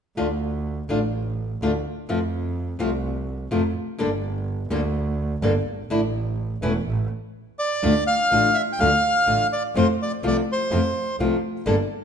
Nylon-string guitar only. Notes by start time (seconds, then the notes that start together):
0.17 D3 A3 D4 F4
0.89 D3 A3 D4 F4
1.62 D3 A3 D4 F4
2.09 C3 F3 A3 C4 F4
2.79 C3 F3 A3 C4 F4
3.51 C3 F3 A3 C4 F4
3.98 D3 G3 A#3 D4 A4
4.70 D3 G3 A#3 D4 A4
5.42 D3 G3 A#3 D4 A4
5.90 D3 A3 D4 E4
6.62 E3 A3 C#4 E4
7.83 D3 A3 D4 F4
8.31 D3 A3 D4 F4
8.80 D3 A3 D4 F4
9.27 D3 A3 D4 F4
9.75 C3 F3 A3 C4 F4
10.23 C3 F3 A3 C4 F4
10.71 C3 F3 A3 C4 F4
11.20 C3 F3 A3 C4 F4
11.66 D3 G3 A#3 D4 A4